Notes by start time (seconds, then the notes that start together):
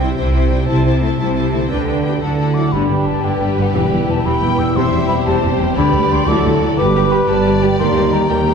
Already playing: C2 C3 E4 G4 C5
0.00 G3 E4 C5 G5
0.16 C2 C3 E4 C5 G5
0.33 E4 C5 G5
0.50 C3 G3 E4 C5 G5
0.55 E4
0.60 A4
0.64 E4 C5
0.68 C2 C3 C5 A5
0.85 E4 C5 A5
1.00 A3 E4 C5 A5
1.18 C2 C3 E4 C5 A5
1.35 E4 C5 A5
1.52 D3 A3 E4 C5 A5
1.57 D4
1.61 G4
1.66 B4 G5
1.70 D2 D3 D4 B4
1.87 D4 B4 G5
2.03 D3 B3 D4 G4 B4 G5
2.08 E4
2.12 F#4
2.17 A4
2.21 D2 D3 E4 A4 F#5 A5
2.38 E4 A4 F#5
2.54 F#3 E4 A4 F#5 D6
2.72 G1 G2 D3 G3 D4 G4 B4 B5
2.90 G1 G2 D3 G3
3.06 G1 G2 D3 G4 A5
3.22 G1 G2 D3 G3 D4 G4 B4 D5 G5
3.40 G1 G2 G3 B4
3.58 G1 G2 D3 F#5
3.73 E1 E2 E3 G3 B3 E4 G4 G5
3.90 E1 E2 G3 E4
4.07 E1 E2 E3 G4 A5
4.25 E1 E2 E3 G3 B3 G4 B4 G5 B5
4.42 E1 E2 G3 G4
4.58 E1 E2 E3 G3 E6
4.75 E1 E2 C3 E3 G3 C4 G4 C5 E5 C6
4.92 E1 E2 G3 E4
5.08 E1 E2 E3 G4 B5
5.26 E1 E2 C3 C5 A5
5.42 E1 E2 G3 G4
5.59 E1 E2 E3 G3 G5
5.75 D2 D3 G3 D4 G4 B4 D5 B5
5.93 D2 G3
6.10 D2 D3 G4 D5 C6
6.26 D2 D3 E3 F#3 E4 F#4 A4 D6
6.45 D2 F#3 A3
6.60 D2 F#3 E4 D5
6.77 G1 G2 G3 G4 B4 D6
6.94 D3 G3 G4 B4
7.11 G3 G4 B4 B5
7.28 G1 G2 G3 G4 B4 D5 A5
7.45 G3 G4 B4
7.62 G3 G4 B4 G5
7.79 D#2 D#3 G3 G4 A#4 C6
7.96 G3 D#4 G4 A#4
8.13 G3 G4 A#4 A#5
8.30 D#2 G3 G4 A#4 G5 A#5
8.46 G3 G4 A#4